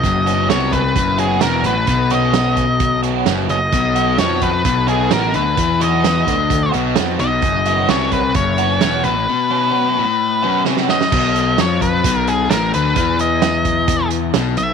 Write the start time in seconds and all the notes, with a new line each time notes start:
Already playing: D#5
0.04 F#1 F#2, kick, closed hi-hat
0.26 F#3 B3 C#4 F#4, closed hi-hat
0.49 C2 C3 F#3 B3 C#4 F#4 C#5, snare, closed hi-hat
0.72 B4, kick, closed hi-hat
0.96 F#1 F#2, kick, closed hi-hat
1.18 F#3 B3 C#4 F#4 G#4, closed hi-hat
1.41 E1 E2 F#3 B3 C#4 F#4 A#4, snare, closed hi-hat
1.63 A1 A2 B4, closed hi-hat
1.87 B1 B2, kick, closed hi-hat
2.10 F#3 B3 C#4 F#4 D#5, closed hi-hat
2.33 F#3 B3 C#4 F#4, snare, closed hi-hat
2.57 kick, closed hi-hat
2.80 kick, closed hi-hat
3.03 F#3 B3 C#4 F#4, closed hi-hat
3.26 F#1 F#2 F#3 B3 C#4 F#4, snare, closed hi-hat
3.49 F#1 F#2 D#5, closed hi-hat
3.72 B1 B2, kick, closed hi-hat
3.96 F#3 B3 D#4 F#4, closed hi-hat
4.18 F2 F3 F#3 B3 D#4 F#4 C#5, snare, closed hi-hat
4.42 B4, kick, closed hi-hat
4.65 B1 B2, kick, closed hi-hat
4.87 F#3 B3 D#4 F#4 G#4, closed hi-hat
5.11 A1 A2 F#3 B3 D#4 F#4 A#4, snare, closed hi-hat
5.34 D2 D3 B4, closed hi-hat
5.57 E2 E3, kick, closed hi-hat
5.80 F#3 B3 D#4 F#4 D#5, closed hi-hat
6.04 F#3 B3 D#4 F#4, snare, closed hi-hat
6.27 D2 D3, kick, closed hi-hat
6.50 kick, closed hi-hat
6.71 B1 B2 F#3 B3 D#4 F#4, closed hi-hat
6.96 F2 F3 F#3 B3 D#4 F#4, snare, closed hi-hat
7.19 B1 B2 D#5, closed hi-hat
7.42 F#1 F#2, kick, closed hi-hat
7.66 F#3 B3 C#4 F#4, closed hi-hat
7.89 C2 C3 F#3 B3 C#4 F#4 C#5, snare, closed hi-hat
8.12 B4, kick, closed hi-hat
8.34 F#1 F#2 C#5, kick, closed hi-hat
8.58 F#3 B3 C#4 F#4, closed hi-hat
8.81 E1 E2 F#3 B3 C#4 F#4, snare, closed hi-hat
9.04 A1 A2 B4, closed hi-hat
9.29 B2
9.50 F#3 B3 C#4 F#4
9.72 F#3 B3 C#4 F#4
9.99 A2
10.43 F#2 F#3 B3 C#4 F#4
10.65 C3 F#3 B3 C#4 F#4, snare
10.77 snare
10.89 F#2 D#5, snare
11.01 snare
11.12 B1 B2, kick, crash
11.36 closed hi-hat
11.58 F2 F3 C#5, snare, closed hi-hat
11.81 B4, kick, closed hi-hat
12.04 B1 B2, kick, closed hi-hat
12.17 A#4
12.27 G#4, closed hi-hat
12.50 A1 A2 A#4, snare, closed hi-hat
12.74 D2 D3 B4, closed hi-hat
12.96 E2 E3, kick, closed hi-hat
13.19 D#5, closed hi-hat
13.42 snare, closed hi-hat
13.65 kick, closed hi-hat
13.88 kick, closed hi-hat
14.10 closed hi-hat
14.34 B1 B2, snare, closed hi-hat
14.57 B1 B2 E5, closed hi-hat